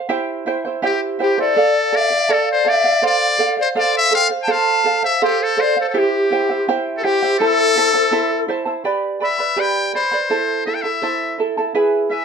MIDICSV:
0, 0, Header, 1, 4, 480
1, 0, Start_track
1, 0, Key_signature, 0, "minor"
1, 0, Tempo, 731707
1, 61, Time_signature, 2, 2, 24, 8
1, 3420, Tempo, 725514
1, 8074, End_track
2, 0, Start_track
2, 0, Title_t, "Pan flute"
2, 0, Program_c, 0, 75
2, 543, Note_on_c, 0, 67, 63
2, 598, Note_off_c, 0, 67, 0
2, 791, Note_on_c, 0, 67, 75
2, 900, Note_off_c, 0, 67, 0
2, 914, Note_on_c, 0, 74, 77
2, 1281, Note_on_c, 0, 76, 74
2, 1290, Note_off_c, 0, 74, 0
2, 1523, Note_on_c, 0, 74, 72
2, 1533, Note_off_c, 0, 76, 0
2, 1634, Note_off_c, 0, 74, 0
2, 1642, Note_on_c, 0, 74, 74
2, 1759, Note_on_c, 0, 76, 82
2, 1769, Note_off_c, 0, 74, 0
2, 1983, Note_off_c, 0, 76, 0
2, 1987, Note_on_c, 0, 77, 80
2, 2321, Note_off_c, 0, 77, 0
2, 2352, Note_on_c, 0, 74, 70
2, 2392, Note_off_c, 0, 74, 0
2, 2475, Note_on_c, 0, 77, 79
2, 2581, Note_off_c, 0, 77, 0
2, 2603, Note_on_c, 0, 77, 81
2, 2705, Note_off_c, 0, 77, 0
2, 2720, Note_on_c, 0, 79, 84
2, 2762, Note_off_c, 0, 79, 0
2, 2901, Note_on_c, 0, 81, 73
2, 2969, Note_off_c, 0, 81, 0
2, 2969, Note_on_c, 0, 81, 87
2, 3310, Note_off_c, 0, 81, 0
2, 3314, Note_on_c, 0, 77, 69
2, 3418, Note_off_c, 0, 77, 0
2, 3422, Note_on_c, 0, 69, 70
2, 3545, Note_on_c, 0, 72, 74
2, 3554, Note_off_c, 0, 69, 0
2, 3674, Note_on_c, 0, 74, 84
2, 3684, Note_off_c, 0, 72, 0
2, 3789, Note_off_c, 0, 74, 0
2, 3794, Note_on_c, 0, 72, 69
2, 3854, Note_off_c, 0, 72, 0
2, 3858, Note_on_c, 0, 72, 53
2, 3914, Note_on_c, 0, 67, 68
2, 3924, Note_off_c, 0, 72, 0
2, 4390, Note_off_c, 0, 67, 0
2, 4579, Note_on_c, 0, 69, 56
2, 4616, Note_on_c, 0, 67, 84
2, 4626, Note_off_c, 0, 69, 0
2, 4861, Note_off_c, 0, 67, 0
2, 4864, Note_on_c, 0, 69, 92
2, 5559, Note_off_c, 0, 69, 0
2, 8074, End_track
3, 0, Start_track
3, 0, Title_t, "Charango"
3, 0, Program_c, 1, 24
3, 58, Note_on_c, 1, 67, 79
3, 58, Note_on_c, 1, 76, 82
3, 60, Note_on_c, 1, 64, 85
3, 63, Note_on_c, 1, 72, 88
3, 64, Note_on_c, 1, 79, 96
3, 293, Note_off_c, 1, 76, 0
3, 298, Note_off_c, 1, 64, 0
3, 300, Note_off_c, 1, 67, 0
3, 301, Note_on_c, 1, 76, 63
3, 303, Note_off_c, 1, 72, 0
3, 303, Note_off_c, 1, 79, 0
3, 306, Note_on_c, 1, 64, 68
3, 310, Note_on_c, 1, 72, 77
3, 312, Note_on_c, 1, 79, 78
3, 417, Note_off_c, 1, 79, 0
3, 422, Note_off_c, 1, 76, 0
3, 424, Note_off_c, 1, 72, 0
3, 425, Note_off_c, 1, 64, 0
3, 425, Note_on_c, 1, 79, 50
3, 432, Note_on_c, 1, 72, 45
3, 440, Note_on_c, 1, 64, 40
3, 539, Note_off_c, 1, 72, 0
3, 539, Note_off_c, 1, 79, 0
3, 540, Note_off_c, 1, 64, 0
3, 540, Note_on_c, 1, 67, 86
3, 543, Note_on_c, 1, 76, 77
3, 547, Note_on_c, 1, 64, 85
3, 547, Note_on_c, 1, 72, 80
3, 547, Note_on_c, 1, 79, 85
3, 772, Note_off_c, 1, 76, 0
3, 778, Note_off_c, 1, 64, 0
3, 780, Note_off_c, 1, 72, 0
3, 780, Note_on_c, 1, 76, 56
3, 781, Note_off_c, 1, 79, 0
3, 782, Note_off_c, 1, 67, 0
3, 786, Note_on_c, 1, 64, 61
3, 788, Note_on_c, 1, 72, 72
3, 789, Note_on_c, 1, 79, 63
3, 897, Note_off_c, 1, 79, 0
3, 900, Note_off_c, 1, 72, 0
3, 902, Note_off_c, 1, 76, 0
3, 905, Note_off_c, 1, 64, 0
3, 905, Note_on_c, 1, 79, 57
3, 908, Note_on_c, 1, 72, 51
3, 914, Note_on_c, 1, 64, 45
3, 1021, Note_off_c, 1, 64, 0
3, 1024, Note_on_c, 1, 69, 65
3, 1025, Note_off_c, 1, 72, 0
3, 1025, Note_off_c, 1, 79, 0
3, 1027, Note_on_c, 1, 74, 83
3, 1031, Note_on_c, 1, 77, 80
3, 1254, Note_off_c, 1, 69, 0
3, 1257, Note_off_c, 1, 74, 0
3, 1259, Note_off_c, 1, 77, 0
3, 1261, Note_on_c, 1, 69, 63
3, 1265, Note_on_c, 1, 74, 57
3, 1267, Note_on_c, 1, 77, 59
3, 1372, Note_off_c, 1, 77, 0
3, 1380, Note_off_c, 1, 74, 0
3, 1380, Note_on_c, 1, 77, 49
3, 1383, Note_off_c, 1, 69, 0
3, 1388, Note_on_c, 1, 74, 40
3, 1498, Note_off_c, 1, 74, 0
3, 1502, Note_on_c, 1, 69, 83
3, 1503, Note_off_c, 1, 77, 0
3, 1506, Note_on_c, 1, 74, 90
3, 1510, Note_on_c, 1, 77, 83
3, 1727, Note_off_c, 1, 69, 0
3, 1735, Note_on_c, 1, 69, 58
3, 1737, Note_off_c, 1, 74, 0
3, 1739, Note_off_c, 1, 77, 0
3, 1745, Note_on_c, 1, 74, 65
3, 1747, Note_on_c, 1, 77, 69
3, 1856, Note_off_c, 1, 77, 0
3, 1860, Note_off_c, 1, 69, 0
3, 1864, Note_on_c, 1, 77, 60
3, 1865, Note_off_c, 1, 74, 0
3, 1872, Note_on_c, 1, 74, 41
3, 1978, Note_off_c, 1, 74, 0
3, 1980, Note_off_c, 1, 77, 0
3, 1980, Note_on_c, 1, 69, 65
3, 1983, Note_on_c, 1, 72, 73
3, 1989, Note_on_c, 1, 77, 85
3, 2213, Note_off_c, 1, 69, 0
3, 2217, Note_off_c, 1, 72, 0
3, 2221, Note_on_c, 1, 69, 62
3, 2222, Note_off_c, 1, 77, 0
3, 2225, Note_on_c, 1, 72, 56
3, 2230, Note_on_c, 1, 77, 61
3, 2335, Note_off_c, 1, 77, 0
3, 2340, Note_off_c, 1, 72, 0
3, 2343, Note_off_c, 1, 69, 0
3, 2343, Note_on_c, 1, 77, 50
3, 2355, Note_on_c, 1, 72, 44
3, 2457, Note_off_c, 1, 72, 0
3, 2460, Note_off_c, 1, 77, 0
3, 2462, Note_on_c, 1, 69, 78
3, 2465, Note_on_c, 1, 72, 82
3, 2468, Note_on_c, 1, 77, 86
3, 2690, Note_off_c, 1, 69, 0
3, 2698, Note_on_c, 1, 69, 59
3, 2699, Note_off_c, 1, 72, 0
3, 2702, Note_off_c, 1, 77, 0
3, 2707, Note_on_c, 1, 72, 66
3, 2710, Note_on_c, 1, 77, 60
3, 2808, Note_off_c, 1, 77, 0
3, 2813, Note_off_c, 1, 72, 0
3, 2816, Note_on_c, 1, 77, 55
3, 2820, Note_off_c, 1, 69, 0
3, 2825, Note_on_c, 1, 72, 45
3, 2929, Note_off_c, 1, 72, 0
3, 2932, Note_off_c, 1, 77, 0
3, 2937, Note_on_c, 1, 69, 66
3, 2937, Note_on_c, 1, 72, 79
3, 2940, Note_on_c, 1, 77, 85
3, 3172, Note_off_c, 1, 69, 0
3, 3179, Note_off_c, 1, 72, 0
3, 3180, Note_on_c, 1, 69, 54
3, 3181, Note_off_c, 1, 77, 0
3, 3186, Note_on_c, 1, 72, 55
3, 3191, Note_on_c, 1, 77, 67
3, 3290, Note_off_c, 1, 77, 0
3, 3296, Note_off_c, 1, 72, 0
3, 3298, Note_on_c, 1, 77, 51
3, 3301, Note_off_c, 1, 69, 0
3, 3306, Note_on_c, 1, 72, 42
3, 3416, Note_off_c, 1, 72, 0
3, 3418, Note_off_c, 1, 77, 0
3, 3423, Note_on_c, 1, 69, 78
3, 3424, Note_on_c, 1, 72, 85
3, 3426, Note_on_c, 1, 77, 86
3, 3649, Note_off_c, 1, 69, 0
3, 3654, Note_off_c, 1, 72, 0
3, 3657, Note_on_c, 1, 69, 59
3, 3658, Note_off_c, 1, 77, 0
3, 3662, Note_on_c, 1, 72, 65
3, 3666, Note_on_c, 1, 77, 65
3, 3777, Note_off_c, 1, 77, 0
3, 3780, Note_off_c, 1, 69, 0
3, 3782, Note_off_c, 1, 72, 0
3, 3785, Note_on_c, 1, 77, 57
3, 3795, Note_on_c, 1, 72, 46
3, 3896, Note_off_c, 1, 72, 0
3, 3898, Note_off_c, 1, 77, 0
3, 3901, Note_on_c, 1, 76, 78
3, 3902, Note_on_c, 1, 67, 72
3, 3903, Note_on_c, 1, 64, 80
3, 3904, Note_on_c, 1, 72, 76
3, 3905, Note_on_c, 1, 79, 76
3, 4138, Note_off_c, 1, 76, 0
3, 4142, Note_off_c, 1, 64, 0
3, 4143, Note_off_c, 1, 67, 0
3, 4145, Note_off_c, 1, 72, 0
3, 4145, Note_off_c, 1, 79, 0
3, 4146, Note_on_c, 1, 76, 58
3, 4150, Note_on_c, 1, 64, 63
3, 4154, Note_on_c, 1, 72, 59
3, 4156, Note_on_c, 1, 79, 70
3, 4259, Note_off_c, 1, 79, 0
3, 4265, Note_off_c, 1, 76, 0
3, 4266, Note_off_c, 1, 72, 0
3, 4267, Note_off_c, 1, 64, 0
3, 4267, Note_on_c, 1, 79, 49
3, 4274, Note_on_c, 1, 72, 48
3, 4277, Note_on_c, 1, 64, 43
3, 4386, Note_off_c, 1, 79, 0
3, 4387, Note_off_c, 1, 64, 0
3, 4390, Note_off_c, 1, 72, 0
3, 4393, Note_on_c, 1, 67, 79
3, 4393, Note_on_c, 1, 76, 83
3, 4395, Note_on_c, 1, 64, 87
3, 4395, Note_on_c, 1, 79, 90
3, 4398, Note_on_c, 1, 72, 88
3, 4616, Note_off_c, 1, 76, 0
3, 4621, Note_off_c, 1, 64, 0
3, 4624, Note_on_c, 1, 76, 63
3, 4625, Note_off_c, 1, 72, 0
3, 4626, Note_off_c, 1, 79, 0
3, 4629, Note_off_c, 1, 67, 0
3, 4629, Note_on_c, 1, 64, 59
3, 4633, Note_on_c, 1, 72, 65
3, 4634, Note_on_c, 1, 79, 72
3, 4743, Note_off_c, 1, 79, 0
3, 4745, Note_off_c, 1, 76, 0
3, 4747, Note_off_c, 1, 64, 0
3, 4747, Note_off_c, 1, 72, 0
3, 4751, Note_on_c, 1, 79, 50
3, 4755, Note_on_c, 1, 72, 47
3, 4761, Note_on_c, 1, 64, 48
3, 4865, Note_off_c, 1, 64, 0
3, 4866, Note_off_c, 1, 72, 0
3, 4868, Note_off_c, 1, 79, 0
3, 4869, Note_on_c, 1, 69, 77
3, 4873, Note_on_c, 1, 64, 83
3, 4873, Note_on_c, 1, 76, 80
3, 4876, Note_on_c, 1, 72, 82
3, 4876, Note_on_c, 1, 81, 81
3, 5104, Note_off_c, 1, 76, 0
3, 5105, Note_off_c, 1, 64, 0
3, 5108, Note_off_c, 1, 69, 0
3, 5109, Note_off_c, 1, 72, 0
3, 5111, Note_off_c, 1, 81, 0
3, 5112, Note_on_c, 1, 76, 62
3, 5113, Note_on_c, 1, 64, 61
3, 5117, Note_on_c, 1, 72, 64
3, 5121, Note_on_c, 1, 81, 62
3, 5215, Note_off_c, 1, 81, 0
3, 5218, Note_off_c, 1, 72, 0
3, 5222, Note_off_c, 1, 64, 0
3, 5223, Note_off_c, 1, 76, 0
3, 5223, Note_on_c, 1, 81, 51
3, 5226, Note_on_c, 1, 72, 43
3, 5230, Note_on_c, 1, 64, 36
3, 5338, Note_off_c, 1, 72, 0
3, 5339, Note_off_c, 1, 64, 0
3, 5339, Note_on_c, 1, 69, 75
3, 5342, Note_off_c, 1, 81, 0
3, 5345, Note_on_c, 1, 72, 91
3, 5345, Note_on_c, 1, 76, 87
3, 5347, Note_on_c, 1, 64, 86
3, 5350, Note_on_c, 1, 81, 83
3, 5575, Note_off_c, 1, 64, 0
3, 5575, Note_off_c, 1, 76, 0
3, 5582, Note_off_c, 1, 72, 0
3, 5583, Note_off_c, 1, 69, 0
3, 5583, Note_on_c, 1, 64, 70
3, 5583, Note_on_c, 1, 76, 65
3, 5586, Note_off_c, 1, 81, 0
3, 5590, Note_on_c, 1, 72, 67
3, 5593, Note_on_c, 1, 81, 76
3, 5688, Note_off_c, 1, 81, 0
3, 5694, Note_off_c, 1, 72, 0
3, 5696, Note_on_c, 1, 81, 55
3, 5699, Note_off_c, 1, 64, 0
3, 5699, Note_off_c, 1, 76, 0
3, 5702, Note_on_c, 1, 72, 59
3, 5707, Note_on_c, 1, 64, 49
3, 5821, Note_off_c, 1, 81, 0
3, 5822, Note_off_c, 1, 72, 0
3, 5822, Note_on_c, 1, 67, 70
3, 5825, Note_off_c, 1, 64, 0
3, 5825, Note_on_c, 1, 79, 78
3, 5825, Note_on_c, 1, 83, 78
3, 5827, Note_on_c, 1, 71, 74
3, 5827, Note_on_c, 1, 74, 78
3, 6052, Note_off_c, 1, 79, 0
3, 6054, Note_off_c, 1, 71, 0
3, 6058, Note_off_c, 1, 74, 0
3, 6060, Note_off_c, 1, 83, 0
3, 6060, Note_on_c, 1, 79, 50
3, 6062, Note_on_c, 1, 71, 53
3, 6064, Note_off_c, 1, 67, 0
3, 6066, Note_on_c, 1, 74, 53
3, 6068, Note_on_c, 1, 83, 58
3, 6170, Note_off_c, 1, 83, 0
3, 6178, Note_off_c, 1, 74, 0
3, 6178, Note_on_c, 1, 83, 41
3, 6179, Note_off_c, 1, 71, 0
3, 6183, Note_off_c, 1, 79, 0
3, 6185, Note_on_c, 1, 74, 39
3, 6187, Note_on_c, 1, 71, 35
3, 6296, Note_off_c, 1, 71, 0
3, 6298, Note_off_c, 1, 83, 0
3, 6299, Note_off_c, 1, 74, 0
3, 6300, Note_on_c, 1, 67, 72
3, 6300, Note_on_c, 1, 79, 63
3, 6304, Note_on_c, 1, 71, 80
3, 6306, Note_on_c, 1, 83, 72
3, 6307, Note_on_c, 1, 74, 73
3, 6536, Note_off_c, 1, 79, 0
3, 6543, Note_off_c, 1, 67, 0
3, 6543, Note_off_c, 1, 74, 0
3, 6544, Note_on_c, 1, 79, 54
3, 6545, Note_off_c, 1, 71, 0
3, 6546, Note_off_c, 1, 83, 0
3, 6551, Note_on_c, 1, 71, 52
3, 6551, Note_on_c, 1, 74, 58
3, 6558, Note_on_c, 1, 83, 61
3, 6655, Note_off_c, 1, 83, 0
3, 6663, Note_off_c, 1, 74, 0
3, 6663, Note_on_c, 1, 83, 46
3, 6665, Note_off_c, 1, 71, 0
3, 6665, Note_off_c, 1, 79, 0
3, 6671, Note_on_c, 1, 74, 48
3, 6673, Note_on_c, 1, 71, 37
3, 6784, Note_off_c, 1, 71, 0
3, 6784, Note_off_c, 1, 83, 0
3, 6785, Note_off_c, 1, 74, 0
3, 6785, Note_on_c, 1, 72, 60
3, 6785, Note_on_c, 1, 76, 67
3, 6787, Note_on_c, 1, 64, 63
3, 6788, Note_on_c, 1, 69, 73
3, 6792, Note_on_c, 1, 81, 72
3, 7017, Note_off_c, 1, 76, 0
3, 7021, Note_off_c, 1, 64, 0
3, 7024, Note_off_c, 1, 69, 0
3, 7025, Note_off_c, 1, 72, 0
3, 7025, Note_on_c, 1, 76, 53
3, 7028, Note_off_c, 1, 81, 0
3, 7029, Note_on_c, 1, 64, 54
3, 7032, Note_on_c, 1, 69, 53
3, 7036, Note_on_c, 1, 81, 58
3, 7135, Note_off_c, 1, 81, 0
3, 7137, Note_off_c, 1, 69, 0
3, 7143, Note_off_c, 1, 64, 0
3, 7143, Note_on_c, 1, 81, 47
3, 7145, Note_off_c, 1, 76, 0
3, 7145, Note_on_c, 1, 69, 42
3, 7151, Note_on_c, 1, 64, 41
3, 7261, Note_off_c, 1, 64, 0
3, 7261, Note_off_c, 1, 69, 0
3, 7261, Note_on_c, 1, 72, 73
3, 7263, Note_off_c, 1, 81, 0
3, 7266, Note_on_c, 1, 76, 71
3, 7269, Note_on_c, 1, 64, 82
3, 7269, Note_on_c, 1, 69, 75
3, 7271, Note_on_c, 1, 81, 70
3, 7495, Note_off_c, 1, 76, 0
3, 7501, Note_off_c, 1, 64, 0
3, 7502, Note_off_c, 1, 72, 0
3, 7503, Note_off_c, 1, 69, 0
3, 7503, Note_on_c, 1, 76, 53
3, 7507, Note_off_c, 1, 81, 0
3, 7509, Note_on_c, 1, 64, 59
3, 7511, Note_on_c, 1, 69, 58
3, 7515, Note_on_c, 1, 81, 61
3, 7620, Note_off_c, 1, 81, 0
3, 7623, Note_off_c, 1, 69, 0
3, 7623, Note_off_c, 1, 76, 0
3, 7626, Note_off_c, 1, 64, 0
3, 7628, Note_on_c, 1, 81, 61
3, 7631, Note_on_c, 1, 69, 51
3, 7635, Note_on_c, 1, 64, 50
3, 7735, Note_off_c, 1, 64, 0
3, 7742, Note_on_c, 1, 68, 71
3, 7742, Note_on_c, 1, 76, 79
3, 7743, Note_off_c, 1, 69, 0
3, 7743, Note_on_c, 1, 64, 79
3, 7745, Note_off_c, 1, 81, 0
3, 7746, Note_on_c, 1, 71, 82
3, 7749, Note_on_c, 1, 80, 78
3, 7970, Note_off_c, 1, 76, 0
3, 7974, Note_off_c, 1, 64, 0
3, 7976, Note_off_c, 1, 71, 0
3, 7978, Note_on_c, 1, 76, 55
3, 7981, Note_off_c, 1, 68, 0
3, 7981, Note_off_c, 1, 80, 0
3, 7982, Note_on_c, 1, 64, 53
3, 7984, Note_on_c, 1, 71, 52
3, 7989, Note_on_c, 1, 80, 54
3, 8074, Note_off_c, 1, 64, 0
3, 8074, Note_off_c, 1, 71, 0
3, 8074, Note_off_c, 1, 76, 0
3, 8074, Note_off_c, 1, 80, 0
3, 8074, End_track
4, 0, Start_track
4, 0, Title_t, "Muted trumpet"
4, 0, Program_c, 2, 59
4, 555, Note_on_c, 2, 67, 78
4, 660, Note_off_c, 2, 67, 0
4, 803, Note_on_c, 2, 67, 77
4, 906, Note_off_c, 2, 67, 0
4, 925, Note_on_c, 2, 69, 86
4, 1286, Note_on_c, 2, 74, 97
4, 1296, Note_off_c, 2, 69, 0
4, 1525, Note_on_c, 2, 69, 84
4, 1535, Note_off_c, 2, 74, 0
4, 1635, Note_off_c, 2, 69, 0
4, 1652, Note_on_c, 2, 72, 88
4, 1763, Note_on_c, 2, 74, 95
4, 1773, Note_off_c, 2, 72, 0
4, 1994, Note_off_c, 2, 74, 0
4, 2010, Note_on_c, 2, 74, 97
4, 2333, Note_off_c, 2, 74, 0
4, 2369, Note_on_c, 2, 72, 85
4, 2417, Note_off_c, 2, 72, 0
4, 2484, Note_on_c, 2, 74, 89
4, 2586, Note_off_c, 2, 74, 0
4, 2606, Note_on_c, 2, 76, 107
4, 2707, Note_off_c, 2, 76, 0
4, 2722, Note_on_c, 2, 77, 102
4, 2806, Note_off_c, 2, 77, 0
4, 2905, Note_on_c, 2, 79, 76
4, 2959, Note_on_c, 2, 77, 104
4, 2968, Note_off_c, 2, 79, 0
4, 3307, Note_off_c, 2, 77, 0
4, 3311, Note_on_c, 2, 76, 91
4, 3418, Note_off_c, 2, 76, 0
4, 3436, Note_on_c, 2, 67, 88
4, 3564, Note_on_c, 2, 69, 89
4, 3574, Note_off_c, 2, 67, 0
4, 3680, Note_on_c, 2, 72, 87
4, 3690, Note_off_c, 2, 69, 0
4, 3792, Note_off_c, 2, 72, 0
4, 3812, Note_on_c, 2, 69, 74
4, 3867, Note_off_c, 2, 69, 0
4, 3871, Note_on_c, 2, 69, 60
4, 3932, Note_on_c, 2, 67, 80
4, 3942, Note_off_c, 2, 69, 0
4, 4399, Note_off_c, 2, 67, 0
4, 4586, Note_on_c, 2, 69, 72
4, 4631, Note_on_c, 2, 67, 102
4, 4641, Note_off_c, 2, 69, 0
4, 4859, Note_off_c, 2, 67, 0
4, 4862, Note_on_c, 2, 69, 110
4, 5558, Note_off_c, 2, 69, 0
4, 6086, Note_on_c, 2, 76, 84
4, 6323, Note_on_c, 2, 79, 91
4, 6333, Note_off_c, 2, 76, 0
4, 6551, Note_off_c, 2, 79, 0
4, 6555, Note_on_c, 2, 72, 86
4, 7003, Note_off_c, 2, 72, 0
4, 7026, Note_on_c, 2, 76, 71
4, 7081, Note_on_c, 2, 79, 68
4, 7091, Note_off_c, 2, 76, 0
4, 7128, Note_on_c, 2, 76, 76
4, 7138, Note_off_c, 2, 79, 0
4, 7511, Note_off_c, 2, 76, 0
4, 7981, Note_on_c, 2, 76, 77
4, 8074, Note_off_c, 2, 76, 0
4, 8074, End_track
0, 0, End_of_file